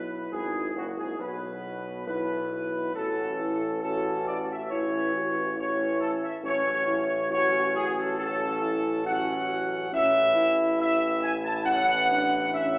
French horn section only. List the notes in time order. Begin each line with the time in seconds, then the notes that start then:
Already playing: E4
1.20 F#4
2.07 E4
2.95 F#4
3.40 E4
3.84 F#4
4.72 E4
5.14 F#4
5.56 E4
6.44 C#4
6.87 E4
7.30 F#4
8.18 C#4
8.61 E4
9.05 F#4
9.92 C#4
10.35 E4
11.66 C#4
12.11 D4
12.53 C#4